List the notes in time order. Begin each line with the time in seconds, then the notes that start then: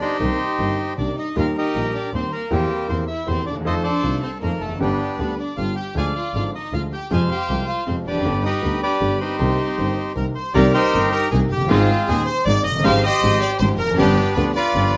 Already playing: D4
0.01 D#4 G4 C5
0.19 C2 C3 D#3 A#3 C4 G4
0.59 G1 G2 D#3 A#3 C4 G4
0.96 C2 C3 D#3 A#3 C4 D4 G4 D5
1.16 D#4 D#5
1.36 D#2 D#3 G3 A#3 F4 G4 A#4 F5
1.56 D#4 G4 A#4 D#5
1.75 A#1 A#2 D#3 G3 A#3 G4
1.93 D4 D5
2.13 D#2 D#3 G3 A#3 C4 G4 C5
2.32 A#3 A#4
2.51 E2 E3 G3 A#3 C4 G4
2.88 E2 E3 A#3 C4 G4 C5
3.07 E4 E5
3.27 E2 E3 A#3 C4 G4 C5
3.46 D#2 D4 D5
3.51 D2
3.55 D#2
3.60 E2
3.65 F2 D#3 F3 A3 C4 D#4 F4 A4 C5 D#5
3.84 D4 A4 D5
4.03 C2 C3 D#3 A3 C4 F4
4.22 C4 C5
4.40 F2 D#3 F3 A3 A#3 C4 F4 A#4
4.59 F1 A3 A4
4.66 E2
4.71 F2
4.76 G1 F#2 D3
4.80 G1 G2 G3 B3 D4 G4
5.17 D2 D3 G3 B3 G4 B4
5.37 D4 D5
5.57 G1 G2 D3 G3 B3 F4 G4 F5
5.76 G4 G5
5.95 D2 D3 F3 G#3 F4 G#4 D5 F5 G#5
6.15 F4 F5
6.34 G#1 G#2 D3 F3 G#3 F4 F5
6.55 D#4 D#5
6.72 D2 D3 F3 G#3 F4 F5
6.92 G4 G5
7.11 F2 C3 F3 G#3 F4 G#4 C5 F5 G#5
7.29 G4 C5 G5
7.49 C2 C3 F3 G#3 F4
7.66 F4 F5
7.87 F2 C3 F3 G#3 C4 F4 C5
8.04 F1 D4 G4 B4 D5
8.11 E2
8.15 F2
8.20 F#2
8.25 G1 G2 D3 G3 B3 G4
8.43 D#4 G4 B4 D#5
8.62 D2 D3 G3 B3 G4
8.82 D4 G4 B4 D5
9.01 G1 G2 D3 G3 B3 G4
9.20 C4 D#4 G4 C5
9.39 C2 C3 D#3 A#3 C4 G4
9.78 G1 G2 D#3 A#3 C4 G4
10.15 C2 C3 D#3 A#3 C4 G4 A#4
10.35 C5
10.54 C2 C3 D#3 A#3 C4 D#4 G4 A#4 D5
10.74 D#4 G4 C5
10.93 G1 G2 D#3 A#3 C4 D#4 G4
11.11 A#4
11.31 C2 C3 D#3 A#3 C4 D#4 G4 G#4
11.50 F#1 G4
11.57 F1
11.62 F#1
11.66 G1 G#1 D#3 G#3 C4 F4
11.71 G#2 G#3 C4 D#4 G#4
12.06 D#1 D#2 D#3 G#3 C4 D#4 G#4
12.26 C5
12.45 G#1 G#2 D#3 G#3 C4 D#4 G#4 D5
12.64 F#1 D#5
12.72 F1
12.76 F#1 G1
12.84 G#1 G#2 F3 G#3 C4 F4 G4 C5 F5
13.04 G4 C5 D#5
13.22 G#1 G#2 F3 G#3 C4 F4 G4
13.41 D5
13.59 G#1 G#2 F3 G#3 C4 F4 G4 C5
13.78 F1 A#4
13.86 E2
13.90 F2
13.94 G1 F#2 G2 F3 B3 D4 G4
14.00 B3 D4 F4 G4
14.35 D2 D3 F3 B3 D4 F4 G4 B4
14.54 F4 B4 D5
14.74 G1 G2 F3 B3 D4 F4 G4
14.93 F#1